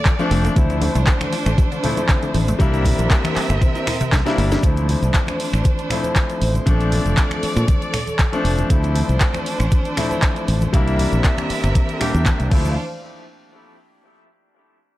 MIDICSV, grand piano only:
0, 0, Header, 1, 2, 480
1, 0, Start_track
1, 0, Key_signature, -1, "minor"
1, 0, Tempo, 508475
1, 535, Time_signature, 4, 2, 24, 8
1, 14139, End_track
2, 0, Start_track
2, 0, Title_t, "Grand piano"
2, 0, Program_c, 0, 0
2, 180, Note_on_c, 0, 53, 99
2, 182, Note_on_c, 0, 57, 90
2, 185, Note_on_c, 0, 60, 89
2, 189, Note_on_c, 0, 62, 109
2, 507, Note_off_c, 0, 53, 0
2, 507, Note_off_c, 0, 57, 0
2, 509, Note_off_c, 0, 60, 0
2, 511, Note_off_c, 0, 62, 0
2, 524, Note_on_c, 0, 53, 81
2, 530, Note_on_c, 0, 57, 73
2, 538, Note_on_c, 0, 60, 73
2, 544, Note_on_c, 0, 64, 91
2, 1703, Note_off_c, 0, 53, 0
2, 1706, Note_off_c, 0, 57, 0
2, 1709, Note_off_c, 0, 60, 0
2, 1713, Note_off_c, 0, 64, 0
2, 1726, Note_on_c, 0, 53, 77
2, 1732, Note_on_c, 0, 57, 73
2, 1739, Note_on_c, 0, 60, 70
2, 1746, Note_on_c, 0, 64, 85
2, 2424, Note_off_c, 0, 53, 0
2, 2426, Note_off_c, 0, 57, 0
2, 2430, Note_off_c, 0, 60, 0
2, 2434, Note_off_c, 0, 64, 0
2, 2442, Note_on_c, 0, 55, 101
2, 2449, Note_on_c, 0, 58, 92
2, 2456, Note_on_c, 0, 62, 94
2, 2463, Note_on_c, 0, 64, 114
2, 3621, Note_off_c, 0, 55, 0
2, 3625, Note_off_c, 0, 58, 0
2, 3629, Note_off_c, 0, 62, 0
2, 3632, Note_off_c, 0, 64, 0
2, 4017, Note_on_c, 0, 55, 96
2, 4022, Note_on_c, 0, 58, 87
2, 4023, Note_on_c, 0, 62, 90
2, 4027, Note_on_c, 0, 64, 108
2, 4345, Note_off_c, 0, 55, 0
2, 4347, Note_off_c, 0, 58, 0
2, 4348, Note_off_c, 0, 62, 0
2, 4350, Note_off_c, 0, 64, 0
2, 4368, Note_on_c, 0, 53, 77
2, 4375, Note_on_c, 0, 57, 71
2, 4382, Note_on_c, 0, 60, 69
2, 4387, Note_on_c, 0, 64, 83
2, 5545, Note_off_c, 0, 53, 0
2, 5548, Note_off_c, 0, 57, 0
2, 5551, Note_off_c, 0, 60, 0
2, 5554, Note_off_c, 0, 64, 0
2, 5568, Note_on_c, 0, 53, 72
2, 5573, Note_on_c, 0, 57, 64
2, 5579, Note_on_c, 0, 60, 68
2, 5586, Note_on_c, 0, 64, 79
2, 6265, Note_off_c, 0, 53, 0
2, 6267, Note_off_c, 0, 57, 0
2, 6270, Note_off_c, 0, 60, 0
2, 6274, Note_off_c, 0, 64, 0
2, 6286, Note_on_c, 0, 53, 98
2, 6293, Note_on_c, 0, 57, 85
2, 6300, Note_on_c, 0, 60, 88
2, 6305, Note_on_c, 0, 62, 104
2, 7463, Note_off_c, 0, 53, 0
2, 7467, Note_off_c, 0, 57, 0
2, 7470, Note_off_c, 0, 60, 0
2, 7473, Note_off_c, 0, 62, 0
2, 7858, Note_on_c, 0, 53, 92
2, 7860, Note_on_c, 0, 57, 84
2, 7864, Note_on_c, 0, 60, 87
2, 7867, Note_on_c, 0, 62, 104
2, 8185, Note_off_c, 0, 53, 0
2, 8187, Note_off_c, 0, 57, 0
2, 8189, Note_off_c, 0, 60, 0
2, 8190, Note_off_c, 0, 62, 0
2, 8210, Note_on_c, 0, 53, 78
2, 8215, Note_on_c, 0, 57, 72
2, 8221, Note_on_c, 0, 60, 70
2, 8227, Note_on_c, 0, 64, 85
2, 9386, Note_off_c, 0, 53, 0
2, 9388, Note_off_c, 0, 57, 0
2, 9391, Note_off_c, 0, 60, 0
2, 9394, Note_off_c, 0, 64, 0
2, 9408, Note_on_c, 0, 53, 74
2, 9414, Note_on_c, 0, 57, 68
2, 9422, Note_on_c, 0, 60, 70
2, 9426, Note_on_c, 0, 64, 83
2, 10105, Note_off_c, 0, 53, 0
2, 10107, Note_off_c, 0, 57, 0
2, 10112, Note_off_c, 0, 60, 0
2, 10114, Note_off_c, 0, 64, 0
2, 10125, Note_on_c, 0, 55, 97
2, 10132, Note_on_c, 0, 58, 90
2, 10139, Note_on_c, 0, 62, 91
2, 10144, Note_on_c, 0, 64, 107
2, 11303, Note_off_c, 0, 55, 0
2, 11307, Note_off_c, 0, 58, 0
2, 11310, Note_off_c, 0, 62, 0
2, 11313, Note_off_c, 0, 64, 0
2, 11326, Note_on_c, 0, 55, 79
2, 11333, Note_on_c, 0, 58, 69
2, 11340, Note_on_c, 0, 62, 72
2, 11345, Note_on_c, 0, 67, 84
2, 11800, Note_on_c, 0, 53, 78
2, 11811, Note_off_c, 0, 55, 0
2, 11812, Note_on_c, 0, 57, 74
2, 11814, Note_off_c, 0, 58, 0
2, 11817, Note_off_c, 0, 62, 0
2, 11820, Note_off_c, 0, 67, 0
2, 11820, Note_on_c, 0, 60, 72
2, 11830, Note_on_c, 0, 64, 88
2, 11989, Note_off_c, 0, 53, 0
2, 11995, Note_off_c, 0, 57, 0
2, 11999, Note_off_c, 0, 60, 0
2, 12005, Note_off_c, 0, 64, 0
2, 14139, End_track
0, 0, End_of_file